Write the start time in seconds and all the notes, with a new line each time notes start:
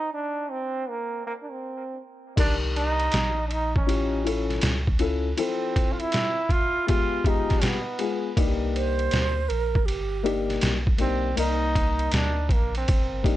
Already playing: D#4
0.13 D4
0.50 C4
0.89 A#3
1.26 A#3
1.43 D4
1.51 C4
2.36 C2 D#3 D4 G4 A#4 D5, kick, crash, ride
2.76 D#4, ride
3.00 ride
3.12 A#1, snare, hi-hat pedal, ride
3.48 D4 D#4, ride
3.76 C#4, kick
3.87 A1 C#4 E4 F4 G4, ride
4.24 C#4 E4 F4 A4, ride
4.50 snare, ride
4.61 C#2, snare, hi-hat pedal, ride
4.87 kick
4.99 C#4 E4 F4 A4, ride
5.37 F3 C4 E4 A4, ride
5.76 kick, ride
5.92 F4
6.00 E4, ride
6.12 snare, hi-hat pedal, ride
6.49 F4, kick, ride
6.87 G#3 B3 F4 G4, kick, ride
7.24 G#3 B3 D#4 F4 G4, kick, ride
7.50 kick, snare, ride
7.62 B3, snare, hi-hat pedal, ride
7.99 G#3 B3 F4 G#4, ride
8.36 C2 A#3 D4 D#4 G4, kick, ride
8.75 C5, ride
8.99 ride
9.11 D2, snare, hi-hat pedal, ride
9.49 A#1 A#4, ride
9.75 kick
9.86 G1 G4, ride
10.23 A#3 D4 D#4 G4, ride
10.50 snare, ride
10.61 B1, snare, hi-hat pedal, ride
10.87 kick
10.98 A#3 C4 D4 D#4 G4, ride
11.36 C2 A#3 D#4 A#4 D5, ride
11.75 kick, ride
11.99 ride
12.12 D2 D4, snare, hi-hat pedal, ride
12.49 A#1 A#3, kick, ride
12.75 C4, ride
12.88 G1, kick, ride
13.23 A#3 D4 D#4 G4, kick, ride